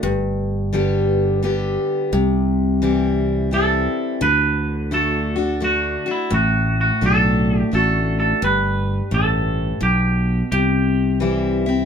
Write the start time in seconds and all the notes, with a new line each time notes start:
0.03 G1 G2
0.73 D3 G3 B3 G4
1.43 D3 G3 B3 G4
2.13 C2 C3
2.82 E3 G3 C4 E4
3.51 E3 G3 C4 E4 A4
4.21 D2 D3 B4
4.91 D3 A3 D4 F#4 A4
5.36 D4 F#4
5.60 D3 A3 D4 F#4
6.06 D4 F#4
6.11 E4
6.30 A1 A2 F#4
6.81 F#4
7.01 B1 D3 A3 D4 F#4
7.06 A4
7.59 G4
7.72 A1 D3 A3 D4 F#4 A4
8.20 A4
8.42 G1 G2 B4
9.11 A1 A2 A4
9.81 B1 B2 G4
10.52 C2 C3 G4
11.20 E3 G3 C4 E4
11.66 C4 E4